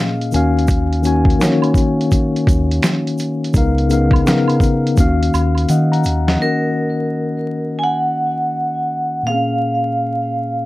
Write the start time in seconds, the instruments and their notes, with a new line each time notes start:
Already playing: tine electric piano A#2 A#3 C#4 G#4 D#5
0.00 tine electric piano F5
0.21 closed hi-hat
0.32 analog synth bass D#2, tine electric piano D#3 A#3 C#4 F#4 G#5, closed hi-hat, shaker
0.36 tine electric piano F5
0.59 closed hi-hat
0.68 kick, closed hi-hat, shaker
0.93 closed hi-hat
1.02 tine electric piano D#3 A#3 C#4 F#4, closed hi-hat, shaker
1.07 tine electric piano G#5
1.25 kick
1.30 closed hi-hat
1.39 tine electric piano D#3 A#3 C#4 F#4, finger snap, snare, closed hi-hat, shaker
1.43 tine electric piano C#5
1.62 closed hi-hat, high woodblock
1.74 kick, closed hi-hat, shaker
2.01 closed hi-hat
2.11 kick, closed hi-hat, shaker
2.36 closed hi-hat
2.47 analog synth bass D#2, kick, closed hi-hat, shaker
2.71 closed hi-hat
2.83 finger snap, snare, closed hi-hat, shaker
3.07 closed hi-hat
3.18 closed hi-hat, shaker
3.44 closed hi-hat
3.53 analog synth bass C#2, tine electric piano C#3 B3 D#4 A#4, kick, closed hi-hat, shaker
3.58 tine electric piano F5
3.78 closed hi-hat
3.89 tine electric piano C#3 B3 D#4 A#4, closed hi-hat, shaker
3.93 tine electric piano F5
4.11 kick, high woodblock
4.16 closed hi-hat
4.24 tine electric piano C#3 B3 D#4 A#4, finger snap, snare, closed hi-hat, shaker
4.29 tine electric piano F5
4.48 closed hi-hat, high woodblock
4.60 kick, closed hi-hat, shaker
4.87 closed hi-hat
4.96 analog synth bass D#2, tine electric piano D#3 A#3 C#4 F#4, kick, closed hi-hat, shaker
5.00 tine electric piano F5
5.23 closed hi-hat
5.34 analog synth bass D#2, closed hi-hat, high woodblock, shaker
5.55 closed hi-hat, high woodblock
5.69 analog synth bass D#3, tine electric piano D#5 F#5, closed hi-hat, shaker
5.92 tine electric piano F#5 A#5, closed hi-hat
6.04 analog synth bass D#2, closed hi-hat, shaker
6.27 tine electric piano D#5 F#5, snare, closed hi-hat
6.37 tine electric piano D#3 A#3
6.41 tine electric piano C#4 F#4, vibraphone A#4
6.46 tine electric piano F#5
7.79 vibraphone G#5
7.83 vibraphone F#5
9.23 tine electric piano A#2 A#3, vibraphone F5
9.27 tine electric piano C4 G#4
9.32 tine electric piano C#4 F5